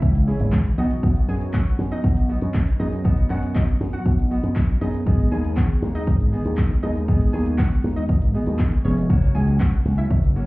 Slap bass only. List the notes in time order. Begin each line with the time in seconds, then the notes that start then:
0.02 C#2
0.40 G#1
0.78 B1
1.03 B1
1.28 F#2
1.79 F#2
2.04 B1
2.42 F#2
2.80 F#2
3.05 B1
3.30 F#2
3.81 F#2
4.06 B1
4.43 F#2
4.81 F#2
5.07 G#1
5.32 D#2
5.82 D#2
6.07 G#1
6.45 D#2
6.83 D#2
7.08 G#1
7.33 D#2
7.84 D#2
8.09 G#1
8.47 D#2
8.85 F1
9.10 F#1
9.35 C#2
9.85 C#2
10.11 F#1